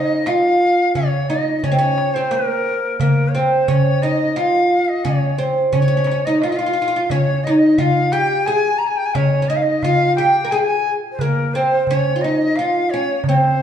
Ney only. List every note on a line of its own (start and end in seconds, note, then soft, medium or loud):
0.00 0.29 D#5 medium
0.28 0.94 F5 medium
0.95 1.31 C#5 medium
1.29 1.60 D#5 medium
1.60 1.65 D#5 medium
1.64 1.77 C#5 medium
1.78 2.16 C#5 medium
2.14 2.33 C5 medium
2.32 3.00 A#4 medium
3.00 3.30 A#4 medium
3.29 3.36 C#5 medium
3.34 3.70 C5 medium
3.68 4.04 C#5 medium
4.02 4.38 D#5 medium
4.37 4.84 F5 medium
4.84 4.90 F5 medium
4.89 5.06 D#5 medium
5.05 5.39 C#5 medium
5.73 6.27 C#5 medium
6.25 6.44 D#5 medium
6.42 6.51 F5 medium
6.49 6.57 D#5 medium
6.56 7.12 F5 medium
7.11 7.45 C#5 medium
7.44 7.52 D#5 medium
7.50 7.60 C#5 medium
7.59 7.80 D#5 medium
7.78 8.14 F5 medium
8.12 8.47 G5 medium
8.46 8.80 G#5 medium
8.78 8.89 A#5 medium
8.87 8.99 G#5 medium
8.97 9.07 G5 medium
9.06 9.16 G#5 medium
9.15 9.50 C#5 medium
9.48 9.57 D#5 medium
9.56 9.64 F5 medium
9.63 9.84 D#5 medium
9.83 10.15 F5 medium
10.16 10.53 G5 medium
10.51 10.60 G#5 medium
10.59 10.66 G5 medium
10.65 10.92 G#5 medium
11.12 11.22 C5 medium
11.20 11.55 A#4 medium
11.54 11.87 C5 medium
11.88 12.23 C#5 medium
12.21 12.58 D#5 medium
12.56 12.92 F5 medium
12.90 13.24 C#5 medium
13.25 13.62 C5 medium